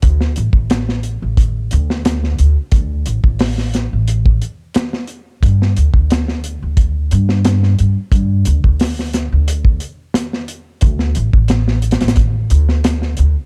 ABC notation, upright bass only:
X:1
M:4/4
L:1/16
Q:1/4=89
K:Dmix
V:1 name="Upright bass" clef=bass
D,,2 A,,, A,,,4 A,,,3 D,,4 D,, z | D,,2 A,,, A,,,4 A,,,3 z6 | G,,2 D,, D,,4 D,,3 G,,4 G,, z | G,,2 D,, D,,4 D,,3 z6 |
D,,2 A,,, A,,,4 A,,,3 D,,4 D,, z |]